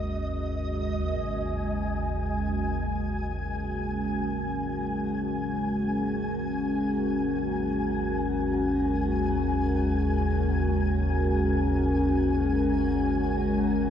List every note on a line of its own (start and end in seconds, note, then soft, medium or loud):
0.00 1.02 G#1 medium
0.00 1.02 D#2 medium
0.00 13.90 G#3 medium
0.00 13.90 C#4 medium
0.00 13.90 F#4 medium
0.00 13.90 A#4 medium
0.00 1.06 D#5 medium
1.03 13.90 G#1 medium
1.03 13.90 D#2 medium
1.03 13.90 G#5 medium